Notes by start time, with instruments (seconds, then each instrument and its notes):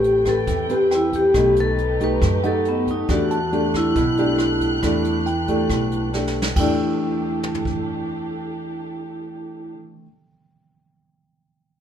Already playing: upright bass A1, nylon-string guitar A3, violin section C4 A4 B4 G5, vibraphone G4
0.04 closed hi-hat
0.25 nylon-string guitar C4 G4 B4, vibraphone A4, kick, cross-stick, closed hi-hat
0.47 upright bass E2, nylon-string guitar E3, kick, closed hi-hat
0.69 nylon-string guitar C4 G4 B4, vibraphone G4, closed hi-hat
0.91 tine electric piano G5, cross-stick, closed hi-hat
0.95 vibraphone E4
1.13 vibraphone G4, kick, closed hi-hat
1.34 upright bass B1, nylon-string guitar B2 A3 D#4 G4, violin section D#4 G4, kick, cross-stick, closed hi-hat
1.56 closed hi-hat
1.60 vibraphone A4
1.78 closed hi-hat
2.00 nylon-string guitar A3 D#4 G4, vibraphone B4, kick, closed hi-hat
2.22 upright bass F#2, kick, cross-stick, closed hi-hat
2.43 nylon-string guitar A3 D#4 G4, vibraphone A4, tine electric piano F#5, closed hi-hat
2.65 vibraphone B3, closed hi-hat
2.87 vibraphone D#4, kick, closed hi-hat
3.09 upright bass E2, nylon-string guitar E3 A3 D4 G4, violin section G3 D4 F#6, vibraphone F#4, kick, cross-stick, closed hi-hat
3.31 tine electric piano A5, closed hi-hat
3.52 nylon-string guitar A3 D4 G4, closed hi-hat
3.74 vibraphone E4, kick, cross-stick, closed hi-hat
3.96 upright bass B1, nylon-string guitar B2, kick, closed hi-hat
4.17 nylon-string guitar A3 D4 G4, closed hi-hat
4.38 cross-stick, closed hi-hat
4.61 kick, closed hi-hat
4.83 upright bass E2, nylon-string guitar E3 A3 D4 G4, kick, cross-stick, closed hi-hat
5.05 closed hi-hat
5.26 tine electric piano G5, closed hi-hat
5.48 nylon-string guitar A3 D4 G4, kick, closed hi-hat
5.69 upright bass B1, nylon-string guitar B2, kick, cross-stick, closed hi-hat
5.91 closed hi-hat
6.13 nylon-string guitar A3 D4 G4, snare
6.27 snare
6.42 snare
6.55 upright bass E2, nylon-string guitar E3 A3, violin section D4 G4 A4, vibraphone E4, tine electric piano G5, kick, crash
6.60 nylon-string guitar D4 G4
7.43 mid tom
7.55 floor tom
7.65 kick